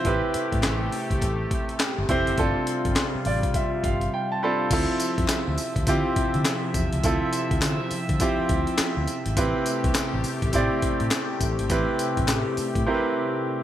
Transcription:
0.04 A1 C3 A3 C4 E4 G4 B4, kick, closed hi-hat
0.34 muted fingered electric bass stroke, closed hi-hat
0.52 A2, kick, closed hi-hat
0.63 A1, snare, clap, closed hi-hat
0.92 open hi-hat
1.11 C2, kick, closed hi-hat
1.22 A1, kick, closed hi-hat
1.51 kick, closed hi-hat
1.69 closed hi-hat
1.80 snare, clap, closed hi-hat
1.98 G1
2.09 F1 C4 E4 G4 C5, kick, closed hi-hat
2.27 F#1, closed hi-hat
2.38 G1 G3 C4 D4 F4 A4, kick, closed hi-hat
2.67 closed hi-hat
2.85 G1, kick, closed hi-hat
2.96 snare, clap, closed hi-hat
3.15 muted fingered electric bass stroke
3.25 A1 D5, open hi-hat
3.43 kick, closed hi-hat
3.54 E5, kick, closed hi-hat
3.84 G1 F5, kick, closed hi-hat
4.01 closed hi-hat
4.14 G5
4.32 A5
4.43 C4 D4 F4 A4 B5
4.71 D2 C3 F3 C4 E4 F4 A4 E5, kick, closed hi-hat, crash, tambourine
5.00 closed hi-hat, tambourine
5.18 F2, kick, closed hi-hat
5.28 muted fingered electric bass stroke, snare, clap, closed hi-hat, tambourine
5.48 D2
5.58 open hi-hat, tambourine
5.76 D2, kick, closed hi-hat
5.87 D3 C4 E4 F4 G4, kick, closed hi-hat, tambourine
6.16 muted fingered electric bass stroke, kick, closed hi-hat
6.34 D3, closed hi-hat
6.45 snare, clap, closed hi-hat, tambourine
6.74 E2, kick, closed hi-hat, tambourine
6.93 C#2, closed hi-hat
7.04 D2 C4 E4 F4 A4, kick, closed hi-hat, tambourine
7.33 closed hi-hat, tambourine
7.51 D2, kick, closed hi-hat
7.62 D3, snare, clap, closed hi-hat, tambourine
7.91 muted fingered electric bass stroke, open hi-hat, tambourine
8.09 D3, kick, closed hi-hat
8.20 C4 E4 F4 G4, kick, closed hi-hat, tambourine
8.39 muted fingered electric bass stroke
8.49 D2, kick, closed hi-hat
8.67 closed hi-hat
8.78 muted fingered electric bass stroke, snare, clap, closed hi-hat, tambourine
8.97 D2
9.07 closed hi-hat, tambourine
9.26 G#1, closed hi-hat
9.37 A1 C3 A3 C4 E4 G4 B4, kick, closed hi-hat, tambourine
9.66 closed hi-hat, tambourine
9.84 C2, kick, closed hi-hat
9.95 snare, clap, closed hi-hat, tambourine
10.13 A1
10.24 open hi-hat, tambourine
10.42 A1, kick, closed hi-hat
10.53 A2 C4 E4 G4 D5, kick, closed hi-hat, tambourine
10.82 muted fingered electric bass stroke, kick, closed hi-hat
11.00 A2, closed hi-hat
11.11 snare, clap, closed hi-hat, tambourine
11.41 A1, kick, closed hi-hat, tambourine
11.59 G#1, closed hi-hat
11.70 A1 C4 E4 G4 B4, kick, closed hi-hat, tambourine
11.99 closed hi-hat, tambourine
12.17 A1, kick, closed hi-hat
12.28 A2, snare, clap, closed hi-hat, tambourine
12.57 muted fingered electric bass stroke, open hi-hat, tambourine
12.75 A2, kick, closed hi-hat
12.87 C4 E4 G4 A#4
12.94 B4

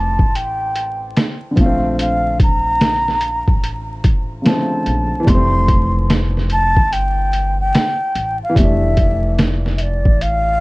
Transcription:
Already playing: F1 E3 G3 A3 C4 A5
0.19 A1, kick
0.35 G5, closed hi-hat
0.76 closed hi-hat
1.17 snare, closed hi-hat
1.51 D3
1.56 A#1 F3 F5, kick, closed hi-hat
1.61 A3
1.66 C4
1.99 F5, closed hi-hat
2.40 A#5, kick, closed hi-hat
2.81 snare, closed hi-hat
3.08 snare
3.21 closed hi-hat
3.48 A1, kick
3.64 closed hi-hat
4.04 kick, closed hi-hat
4.42 C#3 F3, closed hi-hat
4.46 D3 A3 C4 A5, snare
4.86 A#1, closed hi-hat
5.20 E3
5.25 F1 G3, kick, closed hi-hat
5.29 A3 C6
5.35 C4
5.68 kick, closed hi-hat
6.10 snare, closed hi-hat
6.37 snare
6.50 A5, closed hi-hat
6.77 G1, kick
6.93 G5, closed hi-hat
7.33 closed hi-hat
7.61 G5
7.75 snare, closed hi-hat
8.15 A1, closed hi-hat
8.43 F5
8.50 E3
8.55 F1 G3 E5, kick, closed hi-hat
8.60 A3
8.64 D4
8.97 kick, closed hi-hat
9.39 snare, closed hi-hat
9.66 snare
9.76 E5, closed hi-hat
9.82 D5
10.05 A1, kick
10.21 F5, closed hi-hat

